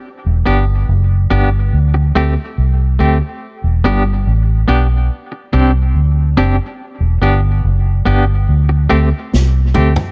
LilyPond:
<<
  \new Staff \with { instrumentName = "Clean electric guitar" } { \time 4/4 \key e \minor \tempo 4 = 71 r8 <b d' g'>8 r8 <b d' g'>8 r8 <a c' g'>8 r8 <a c' g'>8 | r8 <b d' g'>8 r8 <b d' g'>8 r8 <c' d' g'>8 r8 <c' d' g'>8 | r8 <b d' g'>8 r8 <b d' g'>8 r8 <a c' g'>8 r8 <a c' g'>8 | }
  \new Staff \with { instrumentName = "Fingered electric bass" } { \clef bass \time 4/4 \key e \minor r16 e,,16 g,,8 fis,,8 g,,8 d,8 d,16 r16 c,8 d,16 r16 | r16 e,,16 g,,8 a,,8 b,,8 r8 c,8 d,8 fis,,16 r16 | r16 e,,16 g,,8 fis,,8 g,,8 d,8 d,16 r16 c,8 d,16 r16 | }
  \new DrumStaff \with { instrumentName = "Drums" } \drummode { \time 4/4 r4 r4 r4 r4 | r4 r4 r4 r4 | r4 r4 r4 sn8 toml16 tomfh16 | }
>>